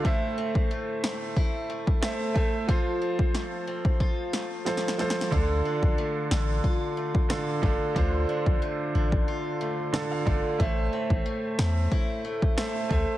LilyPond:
<<
  \new Staff \with { instrumentName = "Grand piano" } { \time 4/4 \key d \minor \tempo 4 = 91 << { r1 | r1 | r1 | r2. a''16 f''16 d''8 |
r1 | } \\ { <a a' c'' e''>4. r4. <a a' c'' e''>8 <a a' c'' e''>8 | <f f' a' c''>4. r4. <f f' a' c''>8 <f f' a' c''>8 | <d d' f' a'>4. r4. <d d' f' a'>8 <d d' f' a'>8 | <d d' f' c''>4. r4. <d d' f' a'>8 <d d' f' a'>8 |
<a a' c'' e''>4. r4. <a a' c'' e''>8 <a a' c'' e''>8 | } >> }
  \new Staff \with { instrumentName = "Steel-string acoustic guitar" } { \time 4/4 \key d \minor <a, e'>8 c'8 a8 c'8 e'8 a8 e'8 a8 | <f f'>8 c'8 a8 c'8 f'8 a8 f'8 a8 | <d f'>8 d'8 a8 d'8 f'8 a8 f'8 a8 | <d f'>8 d'8 a8 d'8 f'8 a8 f'8 a8 |
<a, e'>8 c'8 a8 c'8 e'8 a8 e'8 a8 | }
  \new Staff \with { instrumentName = "Sub bass" } { \clef bass \time 4/4 \key d \minor r1 | r1 | d,8 r16 bes,,16 r8 a,,8 r4. g,,16 r16 | d,8 r16 bes,,16 r8 a,,8 r4. g,,16 r16 |
a,,8 r16 a,,16 r8 e,8 r4. d,16 r16 | }
  \new DrumStaff \with { instrumentName = "Drums" } \drummode { \time 4/4 bd8. bd16 r8 sn8 bd8. bd16 <ss sn>8 bd8 | bd8. bd16 sn8. bd16 bd8 sn8 \tuplet 3/2 { sn16 sn16 sn16 sn16 sn16 sn16 } | bd8. bd16 r8 sn8 bd8. bd16 <ss sn>8 bd8 | bd8. bd16 r8. bd16 r4 <ss sn>8 bd8 |
bd8. bd16 r8 sn8 bd8. bd16 <ss sn>8 bd8 | }
>>